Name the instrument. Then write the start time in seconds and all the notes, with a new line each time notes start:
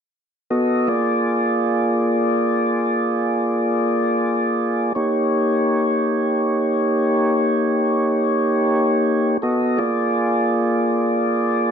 tonewheel organ
0.51 B3 F#4 A4 D#5
0.87 A#3 F4 G#4 D5
4.95 A#3 D#4 G4 C#5
9.42 B3 F#4 A4 D#5
9.77 A#3 F4 G#4 D5